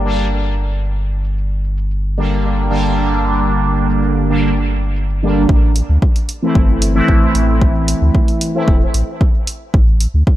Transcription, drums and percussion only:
0.05 shaker soft
0.58 shaker soft
0.71 shaker soft
0.85 shaker soft
1.11 shaker soft
1.24 shaker medium
1.38 shaker soft
1.64 shaker soft
1.77 shaker medium
1.91 shaker soft
2.18 shaker soft
2.31 shaker medium
2.44 shaker soft
2.71 shaker soft
2.84 shaker medium
2.97 shaker soft
3.24 shaker soft
3.37 shaker medium
3.50 shaker soft
3.77 shaker soft
3.90 shaker medium
4.03 shaker soft
4.30 shaker soft
4.43 shaker medium
4.57 shaker soft
4.83 shaker soft
4.96 shaker medium
5.10 shaker soft
5.36 shaker soft
5.49 kick loud
5.76 open hi-hat medium
6.02 kick medium
6.16 open hi-hat soft
6.29 open hi-hat medium
6.55 kick loud
6.82 open hi-hat medium
7.08 kick loud
7.35 open hi-hat medium
7.62 kick loud
7.88 open hi-hat medium
8.15 kick loud
8.28 open hi-hat soft
8.41 open hi-hat medium
8.68 kick loud
8.94 open hi-hat medium
9.21 kick loud
9.47 open hi-hat medium
9.74 kick loud
10.00 open hi-hat medium
10.27 kick loud

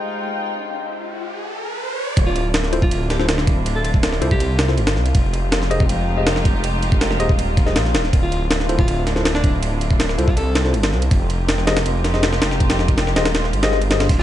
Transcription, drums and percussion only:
2.17 kick loud
2.17 ride medium
2.36 ride medium
2.54 snare loud
2.54 ride medium
2.64 snare soft
2.73 ride medium
2.82 kick loud
2.91 ride medium
3.10 snare medium
3.10 ride medium
3.20 snare soft
3.29 snare loud
3.29 ride medium
3.38 snare medium
3.47 kick loud
3.47 ride medium
3.66 ride medium
3.85 ride medium
3.94 kick medium
4.03 snare loud
4.03 ride medium
4.13 snare soft
4.22 ride medium
4.31 kick medium
4.40 ride medium
4.59 snare loud
4.59 ride medium
4.68 snare soft
4.78 ride medium
4.87 snare loud
4.87 ride medium
4.96 snare soft
5.06 ride medium
5.15 kick loud
5.15 ride loud
5.33 ride medium
5.52 snare loud
5.52 ride medium
5.62 snare soft
5.71 ride medium
5.80 kick medium
5.89 ride medium
6.27 snare loud
6.27 ride medium
6.36 snare medium
6.45 kick medium
6.45 ride medium
6.64 ride medium
6.83 ride medium
6.92 kick medium
7.01 snare loud
7.01 ride medium
7.11 snare soft
7.20 ride medium
7.29 kick medium
7.39 ride medium
7.57 kick loud
7.57 ride medium
7.67 snare soft
7.76 snare loud
7.76 ride medium
7.85 snare soft
7.95 snare loud
7.95 ride medium
8.04 snare soft
8.13 kick loud
8.13 ride medium
8.32 ride medium
8.51 snare loud
8.51 ride medium
8.60 snare soft
8.69 ride medium
8.79 kick loud
8.88 ride medium
9.07 snare medium
9.07 ride medium
9.16 snare soft
9.25 snare loud
9.25 ride medium
9.35 snare medium
9.44 kick loud
9.44 ride medium
9.63 ride medium
9.81 ride medium
9.91 kick medium
10.00 snare loud
10.00 ride medium
10.09 snare soft
10.19 ride medium
10.28 kick loud
10.37 ride medium
10.55 snare loud
10.55 ride medium
10.65 snare soft
10.74 ride medium
10.83 snare loud
10.83 ride medium
10.93 snare soft
11.02 ride medium
11.11 kick loud
11.11 ride medium
11.30 ride medium
11.49 snare loud
11.49 ride medium
11.58 snare soft
11.67 snare loud
11.67 ride medium
11.77 snare loud
11.77 ride medium
11.86 ride medium
12.04 snare medium
12.04 ride medium
12.14 snare soft
12.23 snare loud
12.23 ride medium
12.33 snare medium
12.42 snare loud
12.42 ride medium
12.51 snare soft
12.60 kick medium
12.60 ride medium
12.70 snare loud
12.70 ride medium
12.79 snare medium
12.88 kick medium
12.88 ride medium
12.98 snare loud
12.98 ride medium
13.07 snare medium
13.16 snare loud
13.16 ride medium
13.25 snare loud
13.25 ride medium
13.35 snare loud
13.35 ride medium
13.44 snare soft
13.53 ride medium
13.63 snare loud
13.63 ride medium
13.72 snare soft
13.82 ride medium
13.91 snare loud
13.91 ride medium
14.00 snare loud
14.00 ride medium
14.09 kick loud
14.09 closed hi-hat loud
14.09 ride loud
14.19 snare medium

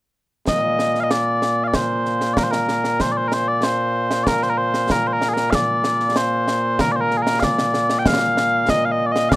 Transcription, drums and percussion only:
0.47 concert bass drum medium
0.47 snare loud
0.79 snare medium
0.95 snare soft
1.11 snare loud
1.42 snare medium
1.74 concert bass drum medium
1.74 snare loud
2.06 snare soft
2.21 snare medium
2.37 concert bass drum medium
2.37 snare loud
2.53 snare medium
2.69 snare medium
2.84 snare medium
3.00 concert bass drum medium
3.00 snare medium
3.32 snare medium
3.63 snare loud
4.11 snare medium
4.27 concert bass drum medium
4.27 snare loud
4.42 snare soft
4.74 snare medium
4.90 concert bass drum medium
4.90 snare loud
5.22 snare medium
5.37 snare medium
5.53 concert bass drum medium
5.53 snare loud
5.84 snare medium
6.00 snare soft
6.16 snare loud
6.48 snare medium
6.79 concert bass drum medium
6.79 snare loud
7.11 snare soft
7.27 snare medium
7.42 concert bass drum medium
7.42 snare loud
7.58 snare medium
7.74 snare medium
7.90 snare medium
8.06 concert bass drum medium
8.06 snare loud
8.37 snare medium
8.69 concert bass drum medium
8.69 snare loud
9.16 snare medium
9.32 concert bass drum medium
9.32 snare loud

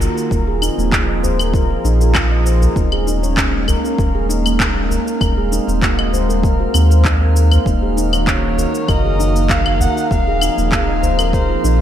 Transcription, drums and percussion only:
0.00 udu medium
0.00 cabasa medium
0.18 cabasa soft
0.31 kick medium
0.31 cabasa soft
0.62 cabasa medium
0.62 claves medium
0.79 cabasa soft
0.92 kick loud
0.92 clap medium
0.92 cabasa soft
1.23 udu medium
1.23 cabasa medium
1.39 cabasa soft
1.39 claves medium
1.54 kick loud
1.54 cabasa soft
1.85 cabasa medium
2.01 cabasa soft
2.15 kick loud
2.15 clap loud
2.15 cabasa soft
2.15 claves medium
2.46 cabasa medium
2.62 udu medium
2.62 cabasa soft
2.76 kick loud
2.76 cabasa soft
2.92 claves medium
3.08 cabasa medium
3.24 cabasa soft
3.37 kick loud
3.37 clap loud
3.37 cabasa soft
3.68 udu medium
3.68 cabasa medium
3.68 claves medium
3.85 cabasa soft
3.98 kick loud
3.98 cabasa soft
4.30 cabasa medium
4.46 cabasa soft
4.46 claves medium
4.60 kick loud
4.60 clap loud
4.60 cabasa soft
4.90 udu medium
4.90 cabasa medium
5.08 cabasa soft
5.21 kick loud
5.21 cabasa soft
5.21 claves medium
5.53 cabasa medium
5.69 cabasa soft
5.82 kick loud
5.82 clap medium
5.82 cabasa soft
5.99 claves medium
6.13 udu medium
6.13 cabasa medium
6.30 cabasa soft
6.43 kick loud
6.43 cabasa soft
6.74 cabasa medium
6.74 claves medium
6.91 cabasa soft
7.05 kick loud
7.05 clap medium
7.05 cabasa soft
7.36 cabasa medium
7.52 udu medium
7.52 cabasa soft
7.52 claves medium
7.66 kick medium
7.66 cabasa soft
7.98 cabasa medium
8.13 cabasa soft
8.13 claves medium
8.27 kick medium
8.27 clap medium
8.27 cabasa soft
8.58 udu medium
8.58 cabasa medium
8.75 cabasa soft
8.88 kick loud
8.88 cabasa soft
8.88 claves medium
9.20 cabasa medium
9.36 cabasa soft
9.50 kick medium
9.50 clap medium
9.50 cabasa soft
9.66 claves medium
9.80 udu medium
9.80 cabasa medium
9.97 cabasa soft
10.11 kick medium
10.11 cabasa soft
10.41 cabasa medium
10.41 claves medium
10.58 cabasa soft
10.72 kick medium
10.72 clap medium
10.72 cabasa soft
11.03 udu medium
11.03 cabasa medium
11.19 cabasa soft
11.19 claves medium
11.33 kick medium
11.33 cabasa soft
11.65 cabasa medium

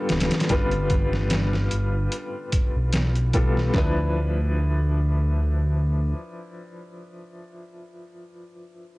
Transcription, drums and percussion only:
0.09 snare medium
0.09 closed hi-hat medium
0.20 snare medium
0.20 closed hi-hat medium
0.31 snare medium
0.31 closed hi-hat medium
0.40 snare medium
0.40 closed hi-hat medium
0.49 kick medium
0.49 closed hi-hat medium
0.71 closed hi-hat soft
0.90 kick medium
0.90 closed hi-hat medium
1.13 snare soft
1.30 snare loud
1.30 closed hi-hat medium
1.53 snare soft
1.71 closed hi-hat medium
2.12 closed hi-hat medium
2.52 kick medium
2.52 closed hi-hat medium
2.93 snare loud
2.93 closed hi-hat medium
3.16 closed hi-hat soft
3.33 kick medium
3.33 closed hi-hat medium
3.57 snare soft
3.75 kick medium
3.75 clap medium

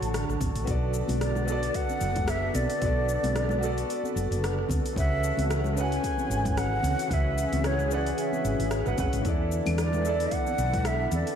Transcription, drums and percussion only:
0.03 open hi-hat soft
0.03 cabasa soft
0.14 cross-stick medium
0.14 open hi-hat medium
0.14 cabasa soft
0.30 cross-stick soft
0.30 cabasa soft
0.41 kick medium
0.41 open hi-hat soft
0.41 high conga medium
0.41 cabasa medium
0.56 open hi-hat soft
0.56 cabasa soft
0.67 kick loud
0.67 open hi-hat medium
0.67 cabasa soft
0.94 cabasa medium
1.08 open hi-hat soft
1.08 high conga medium
1.08 low conga medium
1.08 cabasa soft
1.21 cross-stick medium
1.21 open hi-hat medium
1.21 cabasa soft
1.35 low conga medium
1.35 cabasa soft
1.48 cabasa medium
1.63 open hi-hat soft
1.63 cabasa soft
1.74 kick medium
1.74 open hi-hat medium
1.74 cabasa soft
1.89 high conga medium
1.89 cabasa soft
2.01 open hi-hat soft
2.01 cabasa medium
2.16 kick loud
2.16 open hi-hat soft
2.16 low conga medium
2.16 cabasa soft
2.28 cross-stick loud
2.28 open hi-hat soft
2.28 cabasa soft
2.54 open hi-hat soft
2.54 high conga medium
2.54 cabasa medium
2.70 open hi-hat soft
2.70 cabasa soft
2.82 kick loud
2.82 open hi-hat medium
2.82 cabasa soft
3.09 cabasa medium
3.23 open hi-hat soft
3.23 high conga medium
3.23 low conga medium
3.23 cabasa soft
3.36 cross-stick medium
3.36 open hi-hat soft
3.36 cabasa soft
3.49 low conga loud
3.49 cabasa soft
3.63 cabasa medium
3.78 open hi-hat soft
3.78 cabasa soft
3.90 open hi-hat medium
3.90 cabasa soft
4.04 high conga medium
4.04 cabasa soft
4.17 open hi-hat soft
4.17 cabasa medium
4.32 open hi-hat soft
4.32 cabasa soft
4.44 cross-stick medium
4.44 open hi-hat soft
4.44 cabasa soft
4.59 cross-stick soft
4.69 kick loud
4.69 open hi-hat soft
4.69 high conga medium
4.69 cabasa medium
4.86 open hi-hat soft
4.86 cabasa soft
4.96 kick loud
4.96 open hi-hat soft
4.96 cabasa soft
5.24 cabasa medium
5.37 open hi-hat soft
5.37 high conga medium
5.37 low conga medium
5.37 cabasa soft
5.51 cross-stick loud
5.51 open hi-hat soft
5.51 cabasa soft
5.64 low conga medium
5.64 cabasa soft
5.77 cabasa medium
5.92 open hi-hat soft
5.92 cabasa soft
6.04 kick medium
6.04 open hi-hat medium
6.04 cabasa soft
6.18 high conga medium
6.18 cabasa soft
6.31 open hi-hat soft
6.31 cabasa medium
6.45 kick loud
6.45 open hi-hat soft
6.45 low conga medium
6.45 cabasa soft
6.57 cross-stick medium
6.57 open hi-hat soft
6.57 cabasa soft
6.83 open hi-hat soft
6.83 high conga medium
6.83 cabasa medium
6.99 open hi-hat soft
6.99 cabasa soft
7.11 kick loud
7.11 open hi-hat soft
7.11 cabasa soft
7.38 open hi-hat soft
7.38 cabasa medium
7.52 open hi-hat soft
7.52 high conga medium
7.52 low conga medium
7.52 cabasa soft
7.64 cross-stick medium
7.64 open hi-hat soft
7.64 cabasa soft
7.79 low conga medium
7.79 cabasa soft
7.91 cabasa medium
8.07 open hi-hat soft
8.07 cabasa soft
8.18 open hi-hat soft
8.18 cabasa soft
8.32 high conga medium
8.32 cabasa soft
8.45 open hi-hat soft
8.45 cabasa medium
8.60 open hi-hat soft
8.60 cabasa soft
8.71 cross-stick medium
8.71 open hi-hat soft
8.71 cabasa soft
8.86 cross-stick soft
8.86 cabasa soft
8.98 kick medium
8.98 open hi-hat soft
8.98 high conga medium
8.98 cabasa medium
9.13 open hi-hat soft
9.13 cabasa soft
9.25 kick loud
9.25 open hi-hat soft
9.25 cabasa soft
9.52 cabasa medium
9.66 open hi-hat soft
9.66 high conga medium
9.66 low conga medium
9.66 cabasa soft
9.66 claves medium
9.78 cross-stick medium
9.78 open hi-hat medium
9.78 cabasa soft
9.93 low conga medium
9.93 cabasa soft
10.05 cabasa medium
10.20 open hi-hat soft
10.20 cabasa soft
10.31 kick medium
10.31 open hi-hat soft
10.31 cabasa soft
10.47 high conga medium
10.47 cabasa soft
10.58 open hi-hat soft
10.58 cabasa medium
10.73 kick loud
10.73 open hi-hat soft
10.73 low conga medium
10.73 cabasa soft
10.85 cross-stick medium
10.85 open hi-hat soft
10.85 cabasa soft
11.12 open hi-hat soft
11.12 high conga medium
11.12 cabasa medium
11.27 open hi-hat soft
11.27 cabasa soft

